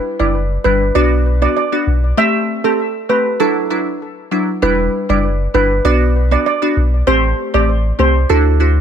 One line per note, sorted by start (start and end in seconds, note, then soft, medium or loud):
0.00 0.16 G3 medium
0.00 0.16 D4 medium
0.00 0.16 E4 loud
0.19 0.57 F#1 medium
0.19 0.35 G3 medium
0.19 0.36 D4 medium
0.19 0.36 E4 medium
0.19 0.32 D5 medium
0.64 0.90 G1 medium
0.64 0.82 G3 medium
0.64 0.82 D4 medium
0.64 0.82 E4 medium
0.64 0.78 B4 medium
0.95 1.47 B1 loud
0.95 1.38 B3 loud
0.95 1.38 D4 medium
0.95 1.38 F#4 loud
0.95 1.09 D5 medium
1.42 1.58 B3 medium
1.42 1.58 D4 medium
1.42 1.58 F#4 medium
1.42 1.54 D5 medium
1.57 2.00 D5 medium
1.72 1.88 B3 medium
1.72 1.89 D4 medium
1.72 1.89 F#4 medium
1.87 2.13 B1 medium
2.17 2.60 A3 medium
2.17 2.61 C4 medium
2.17 2.61 G4 loud
2.17 2.32 E5 loud
2.64 2.80 A3 medium
2.64 2.80 C4 medium
2.64 2.81 G4 medium
2.64 2.77 A4 medium
3.09 3.27 A3 medium
3.09 3.27 C4 medium
3.09 3.27 G4 medium
3.09 3.23 B4 medium
3.40 3.68 F#3 loud
3.40 3.68 D4 medium
3.40 3.68 E4 loud
3.40 3.84 A4 loud
3.70 3.88 F#3 medium
3.70 3.88 D4 medium
3.70 3.88 E4 medium
4.31 4.49 F#3 medium
4.31 4.49 D4 medium
4.31 4.50 E4 medium
4.62 4.88 E1 loud
4.62 5.05 G3 medium
4.62 5.05 D4 medium
4.62 5.06 E4 loud
4.62 4.89 B4 medium
5.09 5.47 F#1 medium
5.09 5.25 G3 medium
5.09 5.25 D4 medium
5.09 5.26 E4 medium
5.09 5.22 D5 medium
5.54 5.80 G1 loud
5.54 5.72 G3 medium
5.54 5.72 D4 medium
5.54 5.72 E4 medium
5.54 5.68 B4 medium
5.85 6.36 B1 loud
5.85 6.28 B3 loud
5.85 6.28 D4 medium
5.85 6.28 F#4 loud
5.85 5.99 D5 medium
6.31 6.48 B3 medium
6.31 6.48 D4 medium
6.31 6.48 F#4 medium
6.31 6.44 D5 medium
6.46 6.90 D5 medium
6.62 6.78 B3 medium
6.62 6.78 D4 medium
6.62 6.78 F#4 medium
6.77 7.02 B1 loud
7.07 7.33 A1 loud
7.07 7.50 A3 medium
7.07 7.50 C4 medium
7.07 7.50 G4 loud
7.07 7.21 C5 loud
7.54 7.92 A1 medium
7.54 7.70 A3 medium
7.54 7.70 C4 medium
7.54 7.70 G4 medium
7.54 7.66 D5 medium
7.99 8.25 C2 medium
7.99 8.17 A3 medium
7.99 8.17 C4 medium
7.99 8.17 G4 medium
7.99 8.13 C5 medium
8.29 8.81 D2 loud
8.29 8.58 D4 medium
8.29 8.58 E4 medium
8.29 8.58 F#4 loud
8.29 8.74 A4 medium
8.60 8.78 D4 medium
8.60 8.78 E4 medium
8.60 8.78 F#4 medium